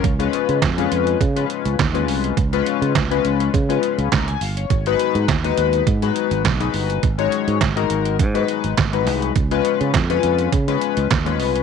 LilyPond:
<<
  \new Staff \with { instrumentName = "Analog polysynth" } { \time 4/4 \key cis \mixolydian \tempo 4 = 103 r16 <gis cis' eis' b'>8. r16 <gis cis' eis' b'>8. r16 <gis cis' eis' b'>8. r16 <gis cis' eis' b'>8. | r16 <gis cis' eis' b'>8. r16 <gis cis' eis' b'>8. r16 <gis cis' eis' b'>8. ais''16 gis''16 eis''16 cis''16~ | cis''16 <gis dis' fis' b'>8. r16 <gis dis' fis' b'>8. r16 <gis dis' fis' b'>8. r16 <gis dis' fis' b'>8. | r16 <gis dis' fis' cis''>8. r16 <gis dis' fis' ais'>8. r16 <gis dis' fis' b'>8. r16 <gis dis' fis' b'>8. |
r16 <gis cis' eis' b'>8. r16 <gis cis' eis' b'>8. r16 <gis cis' eis' b'>8. r16 <gis cis' eis' b'>8. | }
  \new Staff \with { instrumentName = "Fingered electric bass" } { \clef bass \time 4/4 \key cis \mixolydian cis,8 r16 cis16 eis,8 eis,8 cis8 r16 cis,16 dis,8 bis,,8 | cis,8 r16 cis16 cis,8 cis,8 cis8 r16 cis,16 cis,8 g,,8 | gis,,8 r16 gis,16 dis,8 dis,8 gis,8 r16 gis,,16 b,,8 g,,8 | gis,,8 r16 gis,16 gis,,8 gis,,8 gis,8 r16 gis,,16 gis,,8 bis,,8 |
cis,8 r16 cis16 eis,8 eis,8 cis8 r16 cis,16 dis,8 bis,,8 | }
  \new DrumStaff \with { instrumentName = "Drums" } \drummode { \time 4/4 <hh bd>16 hh16 hh16 hh16 <hc hh bd sn>16 hh16 hh16 hh16 <hh bd>16 hh16 hh16 hh16 <hc hh bd sn>16 hh16 hho16 hh16 | <hh bd>16 hh16 hh16 hh16 <hc hh bd sn>16 hh16 hh16 hh16 <hh bd>16 hh16 hh16 hh16 <hc hh bd sn>16 hh16 hho16 hh16 | <hh bd>16 hh16 hh16 hh16 <hc hh bd sn>16 hh16 hh16 hh16 <hh bd>16 hh16 hh16 hh16 <hc hh bd sn>16 hh16 hho16 hh16 | <hh bd>16 hh16 hh16 hh16 <hc hh bd sn>16 hh16 hh16 hh16 <hh bd>16 hh16 hh16 hh16 <hc hh bd sn>16 hh16 hho16 hh16 |
<hh bd>16 hh16 hh16 hh16 <hc hh bd sn>16 hh16 hh16 hh16 <hh bd>16 hh16 hh16 hh16 <hc hh bd sn>16 hh16 hho16 hh16 | }
>>